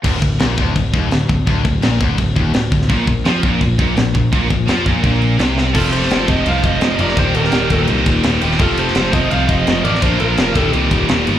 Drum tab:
CC |x-x-x-x-x-x-x-x-|x-x-x-x-x-x-x-x-|x-x-x-x-x-x-x-x-|x-x-x-x-x-x-x---|
RD |----------------|----------------|----------------|----------------|
SD |----o-------o---|----o-------o--o|----o-------o---|----o-------o-o-|
BD |o-o---o-o-o---o-|o-o---o-o-o---o-|o-o---o-o-o---o-|o-o---o-o-------|

CC |x---------------|----------------|x---------------|----------------|
RD |--x-x-x-x-x-x-x-|x-x-x-x-x-x-x-x-|--x-x-x-x-x-x-x-|x-x-x-x-x-x-x-x-|
SD |---oo-------o--o|---oo-------o--o|---oo-------o--o|----o-------o---|
BD |o-----o---o-----|o-----o---o-----|o-----o---o-----|o-----o---o-----|